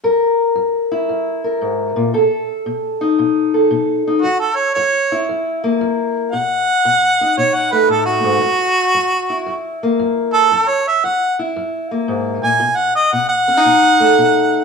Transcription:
0.04 steel-string acoustic guitar F#2 A#4
0.55 steel-string acoustic guitar F#2
0.92 steel-string acoustic guitar E4
1.09 steel-string acoustic guitar F#2
1.44 steel-string acoustic guitar A#4
1.61 steel-string acoustic guitar G#2
1.96 steel-string acoustic guitar A#2
2.14 steel-string acoustic guitar B2 A4
2.66 steel-string acoustic guitar B2
3.01 steel-string acoustic guitar D#4
3.19 steel-string acoustic guitar B2
3.54 steel-string acoustic guitar A4
3.71 steel-string acoustic guitar B2
4.07 steel-string acoustic guitar D#4
4.22 steel-string acoustic guitar F#2, harmonica F#4
4.39 harmonica A4
4.57 harmonica C#5
4.74 steel-string acoustic guitar F#2, harmonica C#5
5.12 steel-string acoustic guitar E4
5.29 steel-string acoustic guitar F#2
5.64 steel-string acoustic guitar A#3
5.81 steel-string acoustic guitar F#2
6.32 steel-string acoustic guitar B2, harmonica F#5
6.85 steel-string acoustic guitar B2
7.21 steel-string acoustic guitar D#4
7.37 steel-string acoustic guitar B2, harmonica C#5
7.54 harmonica F#5
7.72 steel-string acoustic guitar A3, harmonica B4
7.88 steel-string acoustic guitar A2, harmonica A4
8.06 harmonica F#4
8.24 steel-string acoustic guitar G#2
8.42 steel-string acoustic guitar F#2
8.94 steel-string acoustic guitar F#2
9.30 steel-string acoustic guitar E4
9.46 steel-string acoustic guitar F#2
9.83 steel-string acoustic guitar A#3
9.99 steel-string acoustic guitar F#2
10.34 harmonica A4
10.52 steel-string acoustic guitar F#2
10.69 harmonica C#5
10.87 harmonica E5
11.04 steel-string acoustic guitar F#2, harmonica F#5
11.39 steel-string acoustic guitar E4
11.56 steel-string acoustic guitar F#2
11.91 steel-string acoustic guitar A#3
12.08 steel-string acoustic guitar G#2
12.43 steel-string acoustic guitar A#2, harmonica G#5
12.60 steel-string acoustic guitar B2
12.77 harmonica F#5
12.96 harmonica D#5
13.12 steel-string acoustic guitar B2, harmonica F#5
13.29 harmonica F#5
13.48 steel-string acoustic guitar C#4
13.57 steel-string acoustic guitar D#4
13.65 steel-string acoustic guitar B2
14.00 steel-string acoustic guitar A3
14.18 steel-string acoustic guitar B2

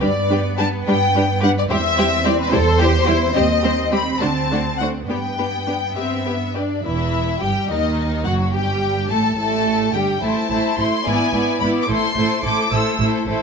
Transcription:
0.00 double bass section G2, viola section G3 D4, cello section B3, violin section G4 B4 D5
0.29 viola section G3 D4, violin section G4 B4
0.58 viola section G3 D4, violin section G4 B4 A5
0.86 double bass section G2, viola section G3 D4, violin section G4 B4 G5
1.15 viola section G3 D4, violin section G4 B4
1.41 viola section G3 D4, violin section G4 B4 F#5
1.59 violin section D5
1.69 double bass section E2, viola section G3 E4, cello section C4, violin section G4 C5 E5
1.98 viola section G3 E4, violin section G4 C5
2.25 viola section G3 E4, violin section G4 C5 D5
2.41 violin section B4
2.51 double bass section E2, viola section G3 E4, violin section G4 C5, cello section A4
2.78 viola section G3 E4, violin section G4 C5, cello section G4
3.06 viola section G3 E4, cello section E4, violin section G4 C5
3.36 double bass section D#2, viola section G3 C4, cello section C4, violin section G4 C5 D#5
3.63 viola section G3 C4, violin section G4 C5
3.92 viola section G3 C4, violin section G4 C5 B5
4.20 double bass section D2, viola section A3 D4, violin section F#4 C5 A5
4.51 viola section A3 D4, violin section F#4 C5
4.78 viola section A3 D4, violin section F#4 C5 F#5
5.08 double bass section G2, viola section B3 D4, cello section B3, violin section G4 B4 G5
5.38 viola section B3 D4, violin section G4 B4
5.67 viola section B3 D4, violin section G4 B4
5.96 double bass section G2, viola section C4, violin section G4 B4 E5
6.26 viola section B3, violin section G4 B4
6.55 viola section D4, violin section G4 B4 D5
6.84 double bass section E1, cello section E2, viola section E3, violin section E4 E5
7.40 double bass section G1, cello section G2, viola section G3, violin section G4 G5
7.69 cello section D#2, double bass section D#2, viola section D#3, violin section D#4 D#5
8.24 double bass section F#1, cello section F#2, viola section F#3, violin section F#4 F#5
8.53 double bass section G1, cello section G2, viola section G3, violin section G4 G5
9.10 double bass section A1, cello section A2, viola section A3, violin section A4 A5
9.37 double bass section A1, cello section A2, viola section A3, violin section A4 A5
9.93 double bass section G1, cello section G2, viola section G3, violin section G4 G5
10.21 double bass section A1, cello section A2, viola section A3 E4, violin section E4 C5 A5
10.50 double bass section A1, cello section A2, viola section A3 E4, violin section E4 C5
10.78 double bass section A1, cello section A2, viola section A3 E4, violin section E4 C5 C6
11.05 double bass section G#1, cello section G#2, viola section B3 E4, violin section E4 D5 G#5
11.33 double bass section G#1, cello section G#2, viola section B3 E4, violin section E4 D5
11.60 double bass section G#1, cello section G#2, viola section B3 E4, violin section E4 D5 B5
11.82 violin section D6
11.88 double bass section A1, cello section A2, viola section A3 E4, violin section A4 C5 C6
12.16 double bass section A1, cello section A2, viola section A3 E4, violin section A4 C5
12.43 double bass section A1, cello section A2, viola section A3 E4, violin section A4 C5 D6
12.71 double bass section A1, cello section A2, viola section A3 E4, violin section A4 C5 E6
12.99 double bass section A1, cello section A2, viola section A3 E4, violin section A4 C5
13.26 double bass section A1, cello section A2, viola section A3 E4, violin section A4 C5

